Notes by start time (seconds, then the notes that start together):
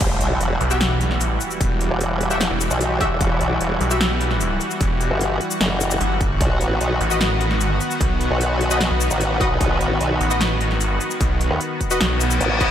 0.01 E1 E3 G3 F#4, kick, closed hi-hat, crash, impact
0.21 B1, closed hi-hat
0.41 E1, closed hi-hat
0.61 B1, closed hi-hat
0.71 F#4 G4 E5, shaker
0.81 snare, closed hi-hat
1.01 closed hi-hat
1.11 snare
1.16 A#1
1.21 closed hi-hat, shaker
1.41 closed hi-hat, shaker
1.51 shaker
1.61 E1, kick, closed hi-hat
1.81 closed hi-hat
1.91 E1
2.01 closed hi-hat
2.21 closed hi-hat
2.31 F#4 G4 E5, shaker
2.41 snare, closed hi-hat
2.51 E1
2.61 closed hi-hat, shaker
2.71 B1, shaker
2.81 closed hi-hat
3.01 F#4 G4 E5, kick, closed hi-hat
3.11 E1
3.21 E1, kick, closed hi-hat
3.41 B1, closed hi-hat
3.61 E1, closed hi-hat
3.81 B1, closed hi-hat
3.91 F#4 G4 E5, shaker
4.01 snare, closed hi-hat
4.21 closed hi-hat
4.31 snare
4.41 closed hi-hat, shaker
4.61 closed hi-hat, shaker
4.71 shaker
4.81 E1, kick, closed hi-hat
5.01 closed hi-hat
5.11 G1
5.21 closed hi-hat
5.41 closed hi-hat
5.51 shaker
5.61 F#1, snare, closed hi-hat
5.81 closed hi-hat, shaker
5.91 shaker
6.01 G1, closed hi-hat
6.21 kick, closed hi-hat
6.41 B1 D#3 B3, kick, closed hi-hat
6.61 A1, closed hi-hat
6.81 B1, closed hi-hat
7.01 A1, closed hi-hat
7.11 F#4 B4 D#5, shaker
7.21 snare, closed hi-hat
7.41 closed hi-hat
7.51 snare
7.56 G#1
7.61 closed hi-hat, shaker
7.81 closed hi-hat, shaker
7.91 shaker
8.01 B1, kick, closed hi-hat
8.21 closed hi-hat
8.31 B1
8.41 closed hi-hat
8.61 closed hi-hat
8.71 F#4 B4 D#5, shaker
8.81 snare, closed hi-hat
8.91 B1
9.01 closed hi-hat, shaker
9.11 A1, shaker
9.21 closed hi-hat
9.41 F#4 B4 D#5, kick, closed hi-hat
9.51 B1
9.61 B1, kick, closed hi-hat
9.81 A1, closed hi-hat
10.01 B1, closed hi-hat
10.21 A1, closed hi-hat
10.31 F#4 B4 D#5, shaker
10.41 snare, closed hi-hat
10.61 closed hi-hat
10.71 snare
10.76 G#1
10.81 closed hi-hat, shaker
11.01 closed hi-hat, shaker
11.11 shaker
11.21 B1, kick, closed hi-hat
11.41 closed hi-hat
11.51 D#2
11.61 closed hi-hat
11.81 kick, closed hi-hat
11.91 F#4 B4 D#5, shaker
12.01 B1, snare, closed hi-hat, reverse cymbal
12.21 closed hi-hat, shaker
12.31 shaker
12.41 A1, closed hi-hat
12.61 F#4 B4 D#5, kick, closed hi-hat